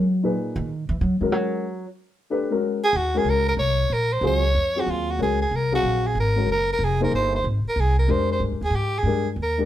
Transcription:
0.00 0.33 F#3 loud
0.23 0.65 A#2 medium
0.23 0.66 D#4 soft
0.23 0.66 G#4 soft
0.23 0.66 B4 medium
0.56 0.86 D#3 medium
0.89 1.00 E3 medium
1.01 1.20 F#3 medium
1.21 1.32 D#3 medium
1.21 1.62 G#3 medium
1.21 1.63 C#4 medium
1.21 1.63 F#4 medium
1.21 1.63 A#4 medium
1.32 1.85 F#3 medium
2.30 2.48 A3 medium
2.30 2.48 D4 medium
2.30 2.48 G4 medium
2.30 2.49 B4 medium
2.50 2.78 G#3 medium
2.50 2.79 C#4 medium
2.50 2.79 F#4 medium
2.50 2.79 A#4 medium
2.84 2.98 G#4 loud
2.93 3.24 D#2 medium
2.93 3.19 F#4 medium
3.14 3.56 G#3 medium
3.14 3.56 C#4 medium
3.14 3.56 F#4 medium
3.14 3.31 G#4 medium
3.14 3.57 A#4 medium
3.24 3.56 C#2 medium
3.29 3.48 A#4 medium
3.48 3.53 A#4 medium
3.57 3.89 C2 medium
3.57 3.94 C#5 loud
3.90 4.21 A#1 medium
3.90 4.14 A#4 loud
4.13 4.23 C5 medium
4.21 4.53 C#2 medium
4.21 4.41 F#3 medium
4.21 4.41 C4 soft
4.21 4.41 F4 soft
4.21 4.41 G#4 medium
4.26 4.81 C#5 loud
4.55 4.86 F2 medium
4.76 5.17 F#3 soft
4.76 5.17 C4 soft
4.76 5.18 F4 soft
4.76 5.18 G#4 medium
4.80 4.92 F#4 medium
4.86 5.18 D#2 medium
4.91 5.12 F4 medium
5.11 5.21 F#4 medium
5.19 5.50 C#2 medium
5.19 5.37 G#3 medium
5.19 5.37 C#4 medium
5.19 5.38 F#4 soft
5.19 5.40 G#4 medium
5.19 5.38 A#4 medium
5.41 5.57 G#4 medium
5.51 5.82 C2 medium
5.51 5.74 A#4 medium
5.72 6.13 F#3 medium
5.72 6.14 C4 soft
5.72 6.08 F#4 medium
5.72 6.14 G#4 medium
5.72 6.14 F5 medium
5.83 6.14 A#1 medium
6.07 6.17 G#4 medium
6.15 6.46 G#1 medium
6.19 6.48 A#4 medium
6.36 6.47 G#3 soft
6.36 6.47 C#4 medium
6.36 6.47 F#4 soft
6.36 6.47 A#4 medium
6.47 6.78 F#1 medium
6.51 6.69 A#4 medium
6.73 6.86 A#4 medium
6.79 7.11 F1 medium
6.84 7.02 G#4 medium
7.00 7.42 A#3 medium
7.00 7.42 D#4 medium
7.00 7.42 G#4 medium
7.00 7.13 A#4 medium
7.00 7.43 C5 medium
7.11 7.43 G1 medium
7.11 7.33 C5 medium
7.36 7.45 C5 medium
7.44 7.63 G#1 medium
7.65 7.81 A#4 medium
7.65 muted upright bass stroke soft
7.76 8.08 C2 medium
7.76 7.98 G#4 medium
7.99 8.12 A#4 medium
8.07 8.39 F2 medium
8.07 8.57 G#3 medium
8.07 8.57 D4 medium
8.07 8.57 G4 soft
8.07 8.57 A#4 medium
8.07 8.30 C5 medium
8.32 8.42 C5 medium
8.40 8.53 G2 medium
8.52 8.60 F2 medium
8.61 8.70 D#2 medium
8.61 8.77 G#4 medium
8.70 9.02 G#2 medium
8.76 9.00 G4 medium
8.98 9.28 G#4 medium
9.03 9.35 G2 medium
9.03 9.24 G#3 medium
9.03 9.24 D4 medium
9.03 9.24 G4 medium
9.03 9.24 A#4 medium
9.36 9.65 D#2 medium
9.42 9.59 A#4 medium
9.58 9.65 G#3 medium
9.58 9.65 D4 medium
9.58 9.65 G4 soft
9.58 9.65 A#4 medium

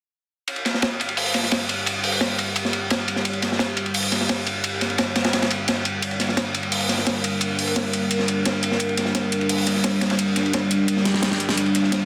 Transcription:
0.48 12.05 G3 medium
0.48 12.05 D4 medium
0.48 6.00 G4 medium
0.48 closed hi-hat medium
0.48 ride medium
0.56 ride soft
0.65 snare soft
0.65 closed hi-hat medium
0.65 ride medium
0.74 snare soft
0.82 snare loud
0.82 closed hi-hat medium
0.82 ride medium
1.00 closed hi-hat medium
1.00 ride medium
1.09 ride soft
1.17 closed hi-hat loud
1.17 open hi-hat medium
1.26 ride soft
1.34 snare soft
1.34 closed hi-hat medium
1.34 ride medium
1.43 snare soft
1.51 snare loud
1.51 closed hi-hat medium
1.51 ride medium
1.69 closed hi-hat medium
1.69 ride medium
1.86 closed hi-hat medium
1.86 ride medium
2.04 closed hi-hat medium
2.04 open hi-hat medium
2.12 ride soft
2.21 snare loud
2.21 closed hi-hat medium
2.21 ride medium
2.38 closed hi-hat medium
2.38 ride medium
2.56 closed hi-hat medium
2.56 ride medium
2.65 snare soft
2.73 closed hi-hat medium
2.73 ride medium
2.90 snare loud
2.90 closed hi-hat medium
2.90 ride medium
3.08 closed hi-hat medium
3.08 ride medium
3.16 snare soft
3.25 closed hi-hat medium
3.25 ride medium
3.33 ride soft
3.42 snare soft
3.42 closed hi-hat medium
3.42 ride medium
3.52 snare soft
3.59 snare loud
3.59 closed hi-hat medium
3.59 ride medium
3.77 closed hi-hat medium
3.77 ride medium
3.86 ride soft
3.94 closed hi-hat medium
3.94 open hi-hat medium
4.03 ride soft
4.12 snare soft
4.12 closed hi-hat medium
4.12 ride medium
4.21 snare soft
4.29 snare loud
4.29 closed hi-hat medium
4.29 ride medium
4.47 closed hi-hat medium
4.47 ride medium
4.64 closed hi-hat medium
4.64 ride medium
4.81 snare soft
4.81 closed hi-hat medium
4.81 ride medium
4.90 ride soft
4.98 snare loud
4.98 closed hi-hat medium
4.98 ride medium
5.16 snare medium
5.16 closed hi-hat medium
5.16 ride medium
5.24 snare loud
5.24 ride medium
5.33 snare loud
5.33 closed hi-hat medium
5.33 ride medium
5.42 snare loud
5.42 ride medium
5.51 closed hi-hat medium
5.51 ride medium
5.68 snare loud
5.68 closed hi-hat medium
5.68 ride medium
5.85 closed hi-hat medium
5.85 ride medium
6.02 11.55 A#4 medium
6.02 closed hi-hat medium
6.02 ride loud
6.11 ride soft
6.20 snare soft
6.20 closed hi-hat medium
6.20 ride medium
6.29 snare soft
6.37 snare loud
6.37 closed hi-hat medium
6.37 ride medium
6.54 closed hi-hat medium
6.54 ride medium
6.63 ride soft
6.72 closed hi-hat medium
6.72 open hi-hat medium
6.80 ride soft
6.89 snare soft
6.89 closed hi-hat medium
6.89 ride medium
6.98 snare soft
7.07 snare loud
7.07 closed hi-hat medium
7.07 ride medium
7.24 closed hi-hat medium
7.24 ride medium
7.41 closed hi-hat medium
7.41 ride medium
7.59 closed hi-hat medium
7.59 open hi-hat medium
7.67 ride soft
7.76 snare loud
7.76 closed hi-hat medium
7.76 ride medium
7.93 closed hi-hat medium
7.93 ride medium
8.11 closed hi-hat medium
8.11 ride medium
8.19 snare soft
8.28 closed hi-hat medium
8.28 ride medium
8.45 snare loud
8.45 closed hi-hat medium
8.45 ride medium
8.63 closed hi-hat medium
8.63 ride medium
8.71 snare soft
8.80 closed hi-hat medium
8.80 ride medium
8.89 ride soft
8.97 snare soft
8.97 closed hi-hat medium
8.97 ride medium
9.05 snare soft
9.15 snare loud
9.15 closed hi-hat medium
9.15 ride medium
9.32 closed hi-hat medium
9.32 ride medium
9.41 ride soft
9.49 closed hi-hat medium
9.49 open hi-hat medium
9.58 ride soft
9.67 snare soft
9.67 closed hi-hat medium
9.67 ride medium
9.75 snare soft
9.84 snare loud
9.84 closed hi-hat medium
9.84 ride medium
10.01 snare loud
10.01 closed hi-hat medium
10.01 ride medium
10.10 snare loud
10.10 ride medium
10.19 closed hi-hat loud
10.19 ride medium
10.36 snare soft
10.36 closed hi-hat medium
10.36 ride medium
10.46 ride soft
10.53 snare loud
10.53 closed hi-hat medium
10.53 ride medium
10.71 closed hi-hat medium
10.71 ride medium
10.88 closed hi-hat medium
10.88 ride medium
10.88 swell medium
10.97 snare soft
11.05 snare medium
11.05 closed hi-hat medium
11.05 ride medium
11.14 snare medium
11.22 snare loud
11.22 snare medium
11.22 closed hi-hat loud
11.22 ride medium
11.31 snare medium
11.40 closed hi-hat medium
11.40 ride medium
11.48 snare soft
11.48 snare medium
11.57 12.05 G4 medium
11.57 closed hi-hat medium
11.57 ride medium
11.66 ride soft
11.75 snare soft
11.75 closed hi-hat medium
11.75 ride medium
11.84 snare soft
11.92 snare loud
11.92 closed hi-hat medium
11.92 ride medium

